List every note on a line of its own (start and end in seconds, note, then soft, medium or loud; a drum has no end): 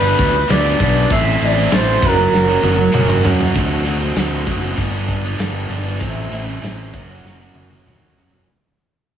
0.00 0.12 G1 loud
0.00 0.34 G2 loud
0.00 0.18 D3 loud
0.00 0.21 D4 medium
0.00 0.46 B4 loud
0.00 0.45 G6 medium
0.05 0.19 G3 medium
0.05 0.20 B3 medium
0.19 0.43 D2 medium
0.19 0.35 D3 medium
0.19 0.34 G3 medium
0.19 0.34 B3 medium
0.19 0.34 D4 medium
0.19 kick medium
0.19 crash medium
0.35 muted overdriven electric guitar stroke medium
0.49 0.74 D2 loud
0.49 0.95 G2 medium
0.49 0.79 D3 loud
0.49 0.68 G3 loud
0.49 0.66 B3 loud
0.49 0.65 D4 loud
0.49 0.79 D5 loud
0.49 0.79 B6 medium
0.49 snare loud
0.49 crash medium
0.66 0.80 G3 medium
0.66 0.81 B3 medium
0.66 0.81 D4 medium
0.80 1.04 B1 medium
0.80 1.09 D3 medium
0.80 1.09 G3 medium
0.80 1.10 B3 medium
0.80 1.10 D4 medium
0.80 1.10 D5 medium
0.80 1.10 B6 medium
0.80 kick medium
0.80 crash medium
1.10 1.34 A1 loud
1.10 1.70 A2 medium
1.10 1.71 E3 loud
1.10 1.58 A3 loud
1.10 1.57 C4 loud
1.10 1.55 E4 loud
1.10 1.45 E5 loud
1.10 1.40 C7 medium
1.10 kick loud
1.10 crash medium
1.41 1.65 A1 medium
1.41 1.73 D5 loud
1.41 1.73 B6 medium
1.41 crash medium
1.56 1.72 A3 medium
1.56 1.73 C4 medium
1.56 1.73 E4 medium
1.71 1.95 A1 loud
1.71 2.00 A2 medium
1.71 2.00 E3 medium
1.71 2.01 A3 loud
1.71 2.01 C4 loud
1.71 2.02 E4 loud
1.71 2.07 C5 loud
1.71 2.01 A6 medium
1.71 snare loud
1.71 crash medium
2.02 2.26 F#1 medium
2.02 2.48 F#3 medium
2.02 2.18 A#3 medium
2.02 2.18 C#4 medium
2.02 2.17 F#4 medium
2.02 3.26 A#4 loud
2.02 3.26 F#6 medium
2.02 kick loud
2.02 crash medium
2.18 muted overdriven electric guitar stroke soft
2.32 2.56 F#1 loud
2.32 snare medium
2.48 2.63 A#3 medium
2.48 2.63 C#4 medium
2.48 2.64 F#4 medium
2.62 2.87 F#1 loud
2.62 2.91 F#3 medium
2.62 2.78 A#3 medium
2.62 2.78 C#4 medium
2.62 2.77 F#4 medium
2.62 high tom medium
2.78 muted overdriven electric guitar stroke medium
2.92 3.18 F#1 medium
2.92 3.22 F#3 loud
2.92 3.09 A#3 loud
2.92 3.08 C#4 loud
2.92 3.06 F#4 loud
2.92 mid tom medium
3.08 3.23 A#3 medium
3.08 3.24 C#4 medium
3.08 3.25 F#4 medium
3.08 mid tom medium
3.23 3.49 F#2 medium
3.23 3.52 F#3 medium
3.23 3.53 A#3 medium
3.23 3.53 C#4 medium
3.23 3.54 F#4 loud
3.23 floor tom loud
3.41 floor tom medium
3.54 4.12 D2 medium
3.54 3.82 D3 loud
3.54 3.83 A3 medium
3.54 3.84 C4 loud
3.54 3.84 F#4 medium
3.54 kick medium
3.54 closed hi-hat medium
3.83 4.14 D3 medium
3.83 4.01 A3 medium
3.83 4.00 C4 medium
3.83 3.98 F#4 medium
3.83 closed hi-hat medium
3.99 4.15 A3 soft
3.99 4.16 C4 medium
3.99 4.17 F#4 medium
4.15 4.44 D2 medium
4.15 4.44 D3 medium
4.15 4.45 A3 medium
4.15 4.46 C4 medium
4.15 4.47 F#4 medium
4.15 snare medium
4.15 closed hi-hat medium
4.45 4.75 F#1 medium
4.45 4.74 D3 medium
4.45 4.63 A3 medium
4.45 4.61 C4 medium
4.45 4.59 F#4 medium
4.45 kick medium
4.45 closed hi-hat medium
4.60 4.76 A3 soft
4.60 4.76 C4 medium
4.60 4.74 F#4 medium
4.76 5.35 G1 medium
4.76 5.23 G2 medium
4.76 5.23 D3 medium
4.76 4.93 G3 medium
4.76 4.92 B3 medium
4.76 4.91 D4 medium
4.76 kick medium
4.76 closed hi-hat medium
4.92 5.25 G3 medium
4.92 5.24 B3 medium
4.92 5.22 D4 medium
5.08 kick medium
5.08 closed hi-hat medium
5.23 5.38 G3 medium
5.23 5.39 B3 medium
5.23 5.39 D4 medium
5.38 5.67 G1 medium
5.38 5.98 G2 medium
5.38 5.68 D3 loud
5.38 5.68 G3 medium
5.38 5.69 B3 medium
5.38 5.70 D4 medium
5.38 snare medium
5.38 closed hi-hat medium
5.69 5.98 G1 medium
5.69 5.98 D3 medium
5.69 5.85 G3 medium
5.69 5.85 B3 medium
5.69 5.83 D4 medium
5.69 closed hi-hat medium
5.85 5.99 G3 soft
5.85 5.99 B3 medium
5.85 5.98 D4 medium
5.85 snare soft
5.99 6.29 A1 medium
5.99 6.60 A2 medium
5.99 6.30 E3 medium
5.99 6.31 A3 medium
5.99 6.32 C4 medium
5.99 6.33 E4 medium
5.99 kick medium
5.99 closed hi-hat medium
6.30 6.59 A1 medium
6.30 6.61 E3 medium
6.30 6.48 A3 medium
6.30 6.47 C4 medium
6.30 6.45 E4 medium
6.30 closed hi-hat medium
6.47 6.61 A3 medium
6.47 6.61 C4 medium
6.47 6.62 E4 medium
6.61 6.91 A1 medium
6.61 6.90 A2 medium
6.61 6.91 E3 medium
6.61 6.91 A3 medium
6.61 6.91 C4 medium
6.61 6.92 E4 medium
6.61 snare medium
6.61 closed hi-hat medium
6.92 7.22 F#1 medium
6.92 7.23 F#3 medium
6.92 7.10 A#3 medium
6.92 7.09 C#4 medium
6.92 7.08 F#4 medium
6.92 kick medium
6.92 closed hi-hat medium
7.09 7.24 A#3 soft
7.09 7.25 C#4 medium
7.09 7.26 F#4 medium
7.24 7.52 F#1 medium
7.24 7.70 F#3 medium
7.24 7.40 A#3 medium
7.24 7.39 C#4 medium
7.24 7.38 F#4 medium
7.24 snare soft
7.39 7.72 A#3 medium
7.39 7.71 C#4 medium
7.39 7.69 F#4 medium
7.55 7.83 F#1 medium
7.55 high tom medium
7.70 7.86 A#3 medium
7.70 7.87 C#4 medium
7.70 7.88 F#4 medium
7.70 high tom soft
7.86 8.15 D#2 medium
7.86 8.16 F#3 medium
7.86 8.17 A#3 medium
7.86 8.18 C#4 medium
7.86 8.19 F#4 loud
7.86 mid tom medium
8.17 8.45 F#2 medium
8.17 8.46 F#3 medium
8.17 8.35 A#3 medium
8.17 8.33 C#4 medium
8.17 8.31 F#4 medium
8.17 floor tom medium
8.33 8.47 A#3 soft
8.33 8.46 C#4 soft
8.33 8.46 F#4 medium
8.33 floor tom medium